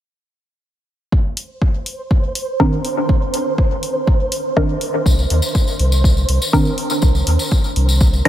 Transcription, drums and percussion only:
1.12 kick
1.37 open hi-hat
1.62 kick
1.86 open hi-hat
2.11 kick
2.35 open hi-hat
2.60 kick
2.85 open hi-hat
3.09 kick
3.34 open hi-hat
3.58 kick
3.83 open hi-hat
4.07 kick
4.32 open hi-hat
4.57 kick
4.81 open hi-hat
5.06 kick, tambourine
5.19 tambourine
5.30 open hi-hat
5.42 tambourine
5.55 kick, tambourine
5.67 tambourine
5.79 open hi-hat
5.92 tambourine
6.04 kick, tambourine
6.17 tambourine
6.29 open hi-hat
6.42 tambourine
6.53 kick, tambourine
6.65 tambourine
6.78 open hi-hat
6.90 tambourine
7.02 kick, tambourine
7.15 tambourine
7.27 open hi-hat
7.39 tambourine
7.51 kick, tambourine
7.64 tambourine
7.76 open hi-hat
7.89 tambourine
8.01 kick, tambourine
8.13 tambourine
8.25 open hi-hat

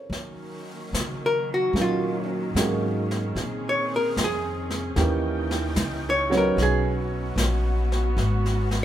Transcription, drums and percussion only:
0.13 brush sweep, snare
0.94 snare, hi-hat pedal
1.76 brush sweep, snare
2.56 snare, hi-hat pedal
3.11 snare
3.36 brush sweep, snare
4.17 snare, hi-hat pedal
4.70 snare
4.96 brush sweep, snare
5.51 snare
5.76 snare, hi-hat pedal
6.32 snare
6.58 brush sweep, snare
7.38 snare, hi-hat pedal
7.92 snare
8.18 brush sweep, snare
8.46 snare
8.71 snare

